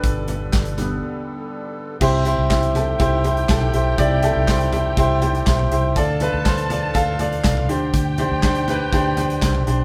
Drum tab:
CC |----------------|x---------------|----------------|----------------|
HH |x-x-xxx---------|--x-xxx-x-xxx-x-|x-x-xxx-x-xxx-x-|x-x-xxx-x-xxx-x-|
CP |----x-----------|----x-------x---|----x-------x---|----x-------x---|
SD |----o-o---------|----o-o-----o---|----o-------o---|----o-------o---|
FT |--o---o---------|------o---o--o--|--o---o---o--o--|--o---o---o--o--|
BD |o---o-----------|o---o---o---o---|o---o---o---o---|o---o---o---o---|

CC |----------------|
HH |x-x-xxx-x-xxx-x-|
CP |----x-------x---|
SD |----o-o-----o---|
FT |--o---o---o--o--|
BD |o---o---o---o---|